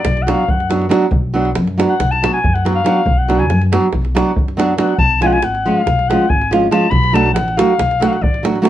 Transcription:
Already playing: D5
0.05 B1, davul high, davul low
0.17 davul high
0.23 F#5
0.27 F#3 B3 D4 F#4 F5, davul high
0.49 F#2 F#5, davul low
0.60 davul high
0.70 F#3 B3 D4 F#4, davul high
0.82 davul high
0.89 F#3 B3 D4 F#4, davul high
1.02 davul high
1.11 B1, davul low
1.34 F#3 B3 D4 F#4
1.45 davul high
1.55 F#2, davul high
1.68 davul high
1.78 F#3 B3 D4 F#4, davul high
1.89 F#5
2.00 B1, davul high, davul low
2.11 A5, davul high
2.22 F#3 B3 D4 F#4, davul high
2.33 G#5
2.44 F#2, davul low
2.54 F#5, davul high
2.65 F#3 B3 D4 F#4, davul high
2.75 F5
2.84 F#3 B3 D4 F#4, davul high
3.05 B1, davul low
3.18 F#5
3.28 F#3 B3 D4 F#4, davul high
3.39 G#5, davul high
3.50 F#2, davul high
3.61 davul high
3.72 F#3 B3 D4 F#4, davul high
3.92 B1, davul high, davul low
4.05 davul high
4.15 F#3 B3 D4 F#4, davul high
4.37 F#2, davul low
4.48 davul high
4.57 F#3 B3 D4 F#4, davul high
4.78 F#3 B3 D4 F#4 F#5, davul high
4.98 B1 A5, davul low
5.21 F3 G#3 C#4 F4 G#5, davul high
5.27 F#5
5.32 G#5, davul high
5.42 G#1 F#5, davul high
5.55 davul high
5.65 F3 G#3 C#4 F4 F5
5.86 B1, davul high, davul low
5.99 davul high
6.09 F3 G#3 C#4 F4 F#5, davul high
6.30 G#1 G#5, davul low
6.42 davul high
6.51 F3 G#3 C#4 F4, davul high
6.71 F3 G#3 C#4 F4 A5, davul high
6.91 B1 B5, davul low
7.04 davul high
7.13 F#3 A3 D4 F#4 A5, davul high
7.26 davul high
7.34 A1 F#5, davul high
7.48 davul high
7.57 F#3 A3 D4 F#4 F5, davul high
7.79 B1, davul high, davul low
7.91 davul high
8.00 F#3 A3 D4 F#4 F#5, davul high
8.08 F5
8.13 F#5, davul high
8.21 A1 D5, davul low
8.34 davul high
8.43 F#3 A3 D4 F#4, davul high
8.56 davul high
8.62 F#3 A3 D4 F#4, davul high

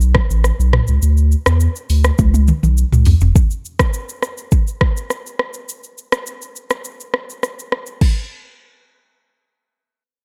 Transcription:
Already playing: B1
0.01 shaker
0.15 kick, cross-stick
0.30 A1, shaker
0.44 cross-stick, shaker
0.59 B1, shaker
0.73 cross-stick, mid tom
0.87 C#2, shaker
1.02 D2, shaker
1.17 shaker
1.32 shaker
1.46 E2, cross-stick, shaker
1.60 shaker
1.76 shaker
1.90 D2, open hi-hat, shaker
2.04 cross-stick, shaker
2.18 C#2, kick, high tom, shaker
2.34 high tom, shaker
2.48 mid tom, shaker
2.63 B1, mid tom, shaker
2.77 shaker
2.92 C#2, mid tom, shaker
3.05 floor tom, open hi-hat, shaker
3.21 F1, floor tom, shaker
3.36 kick, shaker
3.51 shaker
3.65 shaker
3.79 kick, cross-stick, shaker
3.94 shaker
4.09 shaker
4.23 cross-stick, shaker
4.38 shaker
4.52 kick, shaker
4.67 shaker
4.81 kick, cross-stick
4.97 shaker
5.10 cross-stick, shaker
5.26 shaker
5.39 cross-stick
5.54 shaker
5.69 shaker
5.84 shaker
5.98 shaker
6.12 cross-stick, shaker
6.26 shaker
6.42 shaker
6.56 shaker
6.70 cross-stick, shaker
6.84 shaker
7.00 shaker
7.14 cross-stick
7.30 shaker
7.43 cross-stick, shaker
7.59 shaker
7.72 cross-stick
7.86 shaker
8.01 kick, crash

